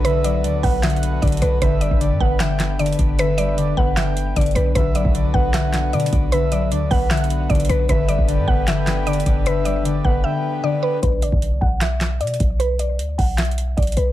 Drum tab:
HH |x-----------x-----------x-----------o-----------x---x---x---x-----------x--x--x--x--x-----------|x-----------x-----------x-----------------------x-----------x-----------x---x---x---x-----------|x-----------x-----------x-----------------------x-----------x-----------x--x--x--x--x-----------|x-----------x-----------x-----------------------x-----------x-----------x---x---x---x-----------|
CP |------------------------------------------------x-----------------------------------------------|------------------------------------------------x-----------x-----------------------------------|------------------------------------------------x-----------------------------------------------|------------------------------------------------x-----------x-----------------------------------|
SD |------------------------------------------------o-----------------------------------------------|------------------------------------------------o-----------o-----------------------------------|------------------------------------------------o-----------------------------------------------|------------------------------------------------o-----------o-----------------------------------|
BD |------------------------------------o-----------------------------------o-----------------------|o-----------------o-----------------o-----------------------------------------------o-----------|------------------------------------o-----------------------------------o-----------------------|o-----------------o-----------------o-----------------------------------------------o-----------|

HH |x-----------x-----------x-----------o-----------x---x---x---x-----------x--x--x--x--x-----------|x-----------x-----------x-----------------------x-----------x-----------x---x---x---x-----------|x-----------x-----------x-----------------------------------------------------------------------|x-----------x-----------x-----------------------x-----------x-----------x---x---x---x-----------|
CP |------------------------------------------------x-----------------------------------------------|------------------------------------------------x-----------x-----------------------------------|------------------------------------------------------------------------------------------------|------------------------------------------------x-----------x-----------------------------------|
SD |------------------------------------------------o-----------------------------------------------|------------------------------------------------o-----------o-----------------------------------|------------------------------------------------------------------------------------------------|------------------------------------------------o-----------o-----------------------------------|
BD |------------------------------------o-----------------------------------o-----------------------|o-----------------o-----------------o-----------------------------------------------o-----------|------------------------------------o-----------------------------------------------------------|o-----------------o-----------------o-----------------------------------------------o-----------|

HH |x-----------x-----------x-----------o-----------x---x---x---x-----------x--x--x--x--x-----------|
CP |------------------------------------------------x-----------------------------------------------|
SD |------------------------------------------------o-----------------------------------------------|
BD |------------------------------------o-----------------------------------o-----------------------|